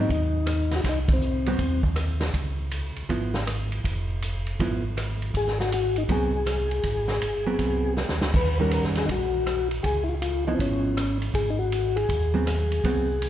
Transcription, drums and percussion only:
0.09 kick soft
0.09 ride soft
0.46 cross-stick medium
0.46 hi-hat pedal soft
0.46 ride medium
0.71 snare soft
0.71 ride soft
0.84 kick soft
0.84 snare soft
0.84 ride medium
1.08 kick medium
1.08 ride medium
1.21 hi-hat pedal medium
1.46 ride soft
1.59 kick soft
1.59 ride medium
1.83 kick medium
1.96 cross-stick medium
1.96 hi-hat pedal medium
1.96 ride medium
2.20 snare soft
2.20 ride soft
2.34 kick soft
2.34 ride medium
2.71 hi-hat pedal medium
2.71 ride medium
2.96 ride soft
3.09 kick soft
3.09 ride soft
3.34 snare medium
3.47 cross-stick medium
3.47 hi-hat pedal medium
3.47 ride medium
3.72 ride soft
3.84 kick soft
3.84 ride medium
4.22 hi-hat pedal medium
4.22 ride medium
4.47 ride soft
4.60 kick soft
4.60 ride medium
4.97 cross-stick medium
4.97 hi-hat pedal soft
4.97 ride medium
5.22 ride soft
5.34 kick soft
5.34 ride medium
5.47 snare soft
5.60 snare soft
5.72 hi-hat pedal soft
5.72 ride medium
5.96 ride soft
6.09 kick soft
6.09 ride medium
6.46 cross-stick medium
6.46 hi-hat pedal soft
6.46 ride medium
6.71 ride soft
6.83 kick soft
6.83 ride medium
7.08 snare soft
7.22 hi-hat pedal medium
7.22 ride medium
7.59 kick soft
7.59 ride medium
7.97 snare soft
7.97 hi-hat pedal medium
8.09 snare medium
8.21 snare medium
8.34 kick medium
8.34 crash medium
8.71 hi-hat pedal medium
8.71 ride medium
8.83 snare soft
8.95 snare soft
8.95 ride soft
9.09 kick soft
9.09 ride medium
9.46 cross-stick medium
9.46 hi-hat pedal medium
9.46 ride medium
9.71 ride soft
9.84 kick soft
9.84 ride medium
10.22 hi-hat pedal medium
10.22 ride medium
10.59 kick soft
10.59 ride medium
10.97 cross-stick medium
10.97 hi-hat pedal medium
10.97 ride medium
11.22 ride soft
11.34 kick soft
11.34 ride medium
11.72 hi-hat pedal medium
11.72 ride medium
11.97 ride soft
12.09 kick soft
12.09 ride medium
12.47 cross-stick medium
12.47 hi-hat pedal medium
12.47 ride medium
12.72 ride soft
12.84 kick soft
12.84 ride medium
13.22 hi-hat pedal medium
13.22 ride medium

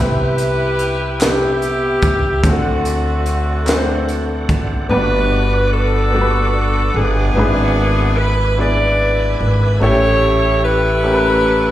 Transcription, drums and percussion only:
0.38 closed hi-hat medium
0.79 closed hi-hat soft
1.21 snare loud
1.21 clap medium
1.21 closed hi-hat medium
1.62 closed hi-hat soft
2.02 kick medium
2.02 closed hi-hat soft
2.44 kick medium
2.44 closed hi-hat medium
2.85 closed hi-hat medium
3.26 closed hi-hat soft
3.67 snare loud
3.67 clap medium
3.67 closed hi-hat medium
4.09 closed hi-hat soft
4.49 kick medium
4.49 closed hi-hat soft

